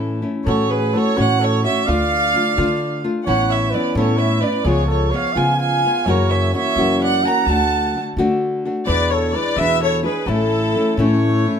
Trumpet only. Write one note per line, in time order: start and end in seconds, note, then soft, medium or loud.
0.46 0.71 A4 medium
0.69 0.95 G#4 medium
0.94 1.19 A4 medium
1.17 1.41 C#5 medium
1.40 1.63 A4 medium
1.64 1.86 C#5 medium
1.84 3.02 D5 medium
3.25 3.48 C#5 medium
3.48 3.72 C#5 medium
3.70 3.94 B4 medium
3.97 4.19 A4 medium
4.18 4.42 C#5 medium
4.40 4.66 B4 medium
4.65 4.86 G#4 medium
4.86 5.12 A4 medium
5.11 5.35 C#5 medium
5.33 5.57 F5 medium
5.57 6.08 F5 medium
6.07 6.33 A#4 medium
6.32 6.53 C#5 medium
6.54 6.98 C#5 medium
7.02 7.26 D5 medium
7.25 7.49 F#5 medium
7.49 8.01 F#5 medium
8.87 9.14 B4 medium
9.13 9.36 A4 medium
9.35 9.58 B4 medium
9.58 9.80 B4 medium
9.81 10.02 A4 medium
10.04 10.30 G#4 medium
10.28 10.98 E4 medium
10.98 11.60 A3 medium